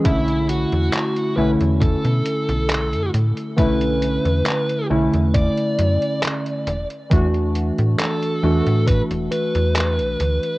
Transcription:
<<
  \new Staff \with { instrumentName = "Lead electric guitar" } { \time 4/4 \key b \minor \tempo 4 = 68 e'8 fis'4 b'8 a'4. r8 | b'4. r8 d''4 r4 | r4 a'4 b'8 b'4. | }
  \new Staff \with { instrumentName = "Synth keys" } { \time 4/4 \key b \minor <d a cis' e'>4. <d a cis' e'>8 r2 | <d a cis' e'>4. <d a cis' e'>8 r2 | <e a d' fis'>4. <e a d' fis'>8 r2 | }
  \new Staff \with { instrumentName = "FM bass" } { \clef bass \time 4/4 \key b \minor b,,8. e,16 r8 b,,16 e,8 b,16 r16 b,,8 fis,16 a,16 r16 | b,,8. e,16 r8 b,,16 e,8 r16 fis,16 r8. e,,16 r16 | e,8. a,16 r8 e,16 a,8 e,,16 r16 e,8 b,,16 d,16 r16 | }
  \new DrumStaff \with { instrumentName = "Drums" } \drummode { \time 4/4 <hh bd>16 hh16 hh16 hh16 <hc hh>16 hh8 hh16 <hh bd>16 hh16 hh16 hh16 <hc hh>16 hh16 hh16 hh16 | <hh bd>16 hh16 hh16 hh16 <hc hh>16 hh8 hh16 <hh bd>16 hh16 hh16 hh16 <hc hh>16 hh16 hh16 hh16 | <hh bd>16 hh16 hh16 hh16 <hc hh>16 hh8 hh16 <hh bd>16 hh16 hh16 hh16 <hc hh>16 hh16 hh16 hh16 | }
>>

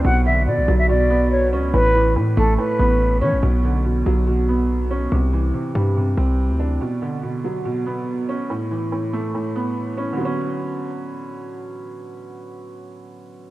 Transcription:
<<
  \new Staff \with { instrumentName = "Flute" } { \time 4/4 \key b \minor \tempo 4 = 142 fis''8 e''8 d''8. e''16 d''4 cis''8 r8 | b'4 r8 a'8 b'4. cis''8 | r1 | r1 |
r1 | r1 | r1 | r1 | }
  \new Staff \with { instrumentName = "Felt piano" } { \clef bass \time 4/4 \key b \minor b,8 d8 b,8 fis8 b,8 b4 cis'8 | a,8 e8 a,8 a8 a,8 b4 cis'8 | b,8 d8 b,8 fis8 b,8 b4 cis'8 | c8 e8 c8 g8 c8 c'4 d'8 |
b,8 d8 b,8 fis8 b,8 b4 cis'8 | a,8 e8 a,8 a8 a,8 b4 cis'8 | <d fis b cis'>1~ | <d fis b cis'>1 | }
  \new Staff \with { instrumentName = "808-style bass" } { \clef bass \time 4/4 \key b \minor b,,4 b,16 b,,16 b,,2 cis,8 | a,,4 a,8 a,,8 r8 a,,4 e16 a,,16 | b,,4. b,,2~ b,,8 | c,4 r8 g,4 c,8. d,8. |
r1 | r1 | r1 | r1 | }
>>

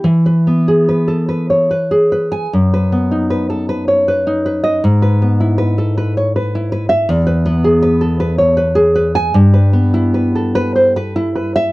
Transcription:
\new Staff \with { instrumentName = "Nylon-string guitar" } { \time 3/4 \key e \major \tempo 4 = 76 << { r2 r8. gis''16 | r2 r8. dis''16 | r2 r8. e''16 | r2 r8. gis''16 |
\key e \minor r2 r8. e''16 | } \\ { e16 b'16 b16 gis'16 b'16 a'16 b'16 cis''16 b'16 gis'16 b'8 | fis,16 b'16 b16 dis'16 b'16 a'16 b'16 cis''16 b'16 dis'16 b'8 | gis,16 b'16 b16 e'16 b'16 a'16 b'16 cis''16 b'16 e'16 b'8 | e,16 b'16 b16 gis'16 b'16 a'16 b'16 cis''16 b'16 gis'16 b'8 |
g,16 b'16 b16 e'16 b'16 a'16 b'16 c''16 b'16 e'16 b'8 | } >> }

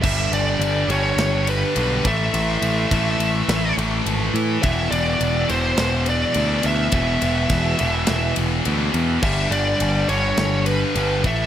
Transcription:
<<
  \new Staff \with { instrumentName = "Lead electric guitar" } { \time 4/4 \key g \mixolydian \tempo 4 = 104 e''8 d''4 cis''4 b'4 e''8~ | e''2~ e''8 r4. | e''8 d''4 c''4 d''4 e''8~ | e''2~ e''8 r4. |
e''8 d''4 cis''4 b'4 e''8 | }
  \new Staff \with { instrumentName = "Distorted electric guitar" } { \clef bass \time 4/4 \key g \mixolydian <g, d g>4. <g, d g>2 <a, e a>8~ | <a, e a>4 <a, e a>2~ <a, e a>8 r8 | <e, b, e>4. <e, b, e>2~ <e, b, e>8 | <e, b, e>4. <e, b, e>2~ <e, b, e>8 |
<g, d g>4. <g, d g>2 <a, e a>8 | }
  \new Staff \with { instrumentName = "Distorted electric guitar" } { \clef bass \time 4/4 \key g \mixolydian <g, d g>4. <g, d g>4. <g, d g>8 <a, e a>8~ | <a, e a>4 <a, e a>4. <a, e a>4 r8 | <e, b, e>4. <e, b, e>4. <e, b, e>4 | <e, b, e>4. <e, b, e>4. <e, b, e>4 |
<g, d g>4. <g, d g>4. <g, d g>8 <a, e a>8 | }
  \new Staff \with { instrumentName = "Picked electric bass" } { \clef bass \time 4/4 \key g \mixolydian g,,8 g,,8 g,,8 g,,8 g,,4 b,,8 a,,8 | a,,8 a,,8 a,,8 a,,8 a,,8 a,,8 gis,,8 a,8 | e,,8 e,,8 e,,8 e,,8 e,,4 d,8 d,8 | e,,8 e,,8 e,,8 e,,8 e,,8 e,,8 d,8 e,8 |
g,,8 g,,8 g,,8 g,,8 g,,4 g,,8 a,,8 | }
  \new DrumStaff \with { instrumentName = "Drums" } \drummode { \time 4/4 <cymc bd>8 cymr8 cymr8 cymr8 <cymr sn>8 cymr8 cymr8 <bd cymr>8 | cymr8 cymr8 <bd cymr>8 cymr8 <cymr sn>8 cymr8 cymr8 cymr8 | <bd cymr>8 cymr8 cymr8 cymr8 <cymr sn>8 cymr8 cymr8 cymr8 | <bd cymr>8 cymr8 <bd cymr sn>8 cymr8 <cymr sn>8 cymr8 cymr8 cymr8 |
<cymc bd>8 cymr8 cymr8 cymr8 <cymr sn>8 cymr8 cymr8 <bd cymr>8 | }
>>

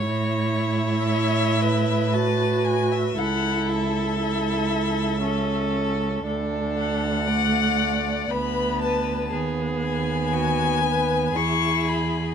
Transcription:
<<
  \new Staff \with { instrumentName = "Violin" } { \time 3/4 \key a \major \tempo 4 = 58 r8 e''4. a''8 gis''16 e''16 | fis''8 e''2~ e''8 | r8 fis''4. b''8 a''8 | r8 gis''4. cis'''8 b''8 | }
  \new Staff \with { instrumentName = "Violin" } { \time 3/4 \key a \major cis''4 cis''8 b'4. | a'2 a'4 | a'4 d''4 b'4 | gis'4 fis'8 b'8 gis'4 | }
  \new Staff \with { instrumentName = "Viola" } { \time 3/4 \key a \major e'2 fis'4 | e'4 e'4 cis'4 | d'4 a4 b4 | b2 e'4 | }
  \new Staff \with { instrumentName = "Cello" } { \clef bass \time 3/4 \key a \major a,2. | cis,2. | d,2 d,4 | dis,2 e,4 | }
>>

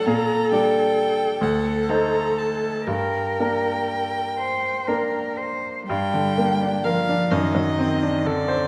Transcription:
<<
  \new Staff \with { instrumentName = "Violin" } { \time 6/8 \key g \minor \tempo 4. = 41 bes''8 g''4 fis''8 bes''8 a''8 | g''2~ g''8 r8 | g''4 f''8 ees''4 d''8 | }
  \new Staff \with { instrumentName = "Cello" } { \time 6/8 \key g \minor a'4. a'4. | bes'4. c''8 bes'8 c''8 | g4 f8 ees4 d8 | }
  \new Staff \with { instrumentName = "Grand piano" } { \time 6/8 \key g \minor bes,8 <g d' d''>4 d,8 <a ees' c''>4 | g,8 <bes d' bes'>4. <bes d' bes'>4 | g,16 d16 bes16 d'16 bes'16 d'16 fis,16 fis16 c'16 d'16 a'16 c''16 | }
>>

